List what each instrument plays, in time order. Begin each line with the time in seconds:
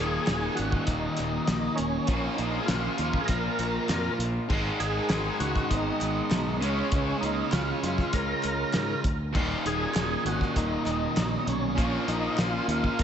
Already playing: overdriven electric guitar D#2 A#2 D#3, lead electric guitar D#4, tonewheel organ G#4
0.00 fingered electric bass D#1
0.27 fingered electric bass D#1, snare, clap, closed hi-hat
0.55 fingered electric bass G#1, lead electric guitar C#4, tonewheel organ F#4, closed hi-hat
0.72 kick
0.86 fingered electric bass D#1, lead electric guitar A#3, tonewheel organ D#4, kick, closed hi-hat
1.17 fingered electric bass D#1, clap, closed hi-hat
1.47 fingered electric bass A#1, snare, clap, closed hi-hat
1.76 fingered electric bass D#1, lead electric guitar A#3, tonewheel organ C#4, closed hi-hat
2.07 fingered electric bass A#1, overdriven electric guitar A#2 F3 A#3, kick, closed hi-hat
2.35 fingered electric bass A#1, lead electric guitar A#3, tonewheel organ D#4, closed hi-hat
2.60 lead electric guitar F4, tonewheel organ G#4
2.66 fingered electric bass A#1, lead electric guitar C#4, tonewheel organ F4, snare, closed hi-hat
2.70 clap
2.97 fingered electric bass D#2, lead electric guitar C#4, tonewheel organ F4, closed hi-hat
3.14 kick
3.21 lead electric guitar F4, tonewheel organ G#4
3.25 fingered electric bass A#1, tonewheel organ A#4, kick, closed hi-hat
3.30 lead electric guitar F4
3.59 fingered electric bass A#1, clap, closed hi-hat
3.89 fingered electric bass F2, snare, clap, closed hi-hat
4.19 fingered electric bass A#1, closed hi-hat
4.49 fingered electric bass G#1, overdriven electric guitar G#2 D#3 G#3, kick, crash
4.80 fingered electric bass G#1, lead electric guitar D#4, tonewheel organ G#4, closed hi-hat
5.09 fingered electric bass G#1, snare, clap, closed hi-hat
5.39 fingered electric bass C#2, lead electric guitar C#4, tonewheel organ F#4, closed hi-hat
5.55 kick, snare
5.70 fingered electric bass G#1, lead electric guitar B3, tonewheel organ D#4, kick, closed hi-hat
6.01 fingered electric bass G#1, clap, closed hi-hat
6.31 fingered electric bass B1, snare, clap, closed hi-hat
6.60 fingered electric bass C#2, overdriven electric guitar C#3 G#3 C#4, lead electric guitar G#3, tonewheel organ C#4, closed hi-hat
6.92 fingered electric bass C#2, kick, closed hi-hat
7.21 fingered electric bass C#2, lead electric guitar A#3, tonewheel organ D#4, closed hi-hat
7.51 fingered electric bass C#2, lead electric guitar C#4, tonewheel organ F4, snare, clap, closed hi-hat
7.83 fingered electric bass F#2, lead electric guitar C#4, tonewheel organ F4, closed hi-hat
7.98 kick, snare
8.13 fingered electric bass C#2, lead electric guitar F4, tonewheel organ A#4, kick, closed hi-hat
8.43 fingered electric bass C#2, clap, closed hi-hat
8.73 fingered electric bass G#2, snare, clap, closed hi-hat
9.04 fingered electric bass D2, kick, closed hi-hat
9.33 fingered electric bass D#1, overdriven electric guitar D#2 A#2 D#3, kick, crash
9.65 fingered electric bass D#1, lead electric guitar D#4, tonewheel organ G#4, closed hi-hat
9.94 fingered electric bass D#1, snare, clap, closed hi-hat
10.25 fingered electric bass G#1, lead electric guitar C#4, tonewheel organ F#4, closed hi-hat
10.41 kick, snare
10.56 fingered electric bass D#1, lead electric guitar A#3, tonewheel organ D#4, kick, closed hi-hat
10.86 fingered electric bass D#1, clap, closed hi-hat
11.17 fingered electric bass A#1, snare, clap, closed hi-hat
11.39 lead electric guitar B3, tonewheel organ D#4
11.47 fingered electric bass B1, lead electric guitar A#3, tonewheel organ C#4, closed hi-hat
11.75 fingered electric bass A#1, overdriven electric guitar A#2 F3 A#3, kick, closed hi-hat
12.08 fingered electric bass A#1, lead electric guitar A#3, tonewheel organ D#4, closed hi-hat
12.38 fingered electric bass A#1, lead electric guitar C#4, tonewheel organ F4, snare, clap, closed hi-hat
12.68 fingered electric bass D#2, lead electric guitar C#4, tonewheel organ F4, closed hi-hat
12.84 kick
12.99 fingered electric bass A#1, lead electric guitar F4, kick, closed hi-hat